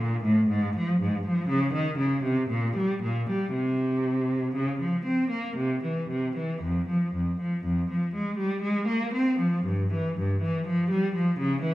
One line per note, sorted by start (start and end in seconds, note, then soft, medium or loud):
0.00 0.23 A#2 soft
0.24 0.49 A2 soft
0.49 0.74 G#2 medium
0.76 1.00 F3 soft
1.01 1.24 G#2 soft
1.26 1.49 F3 medium
1.48 1.73 C#3 medium
1.74 1.98 D#3 soft
1.98 2.23 C#3 soft
2.24 2.49 C3 soft
2.49 2.74 A#2 medium
2.77 3.01 G3 soft
3.03 3.27 A#2 soft
3.29 3.53 G3 soft
3.53 4.53 C3 soft
4.55 4.79 C#3 soft
4.80 5.05 F3 soft
5.05 5.30 C4 soft
5.30 5.56 A#3 soft
5.56 5.82 C3 soft
5.83 6.09 E3 soft
6.10 6.35 C3 soft
6.36 6.61 E3 soft
6.62 6.87 F2 soft
6.89 7.13 F3 soft
7.15 7.39 F2 soft
7.41 7.64 F3 soft
7.65 7.88 F2 soft
7.90 8.13 F3 soft
8.14 8.37 G#3 soft
8.37 8.61 G3 soft
8.62 8.86 G#3 soft
8.87 9.12 A#3 soft
9.13 9.38 C4 soft
9.39 9.65 F3 soft
9.65 9.91 G2 medium
9.93 10.17 E3 soft
10.18 10.42 G2 soft
10.42 10.66 E3 soft
10.67 10.90 F3 medium
10.90 11.14 G3 medium
11.15 11.39 F3 soft
11.39 11.63 C#3 soft
11.62 11.74 E3 medium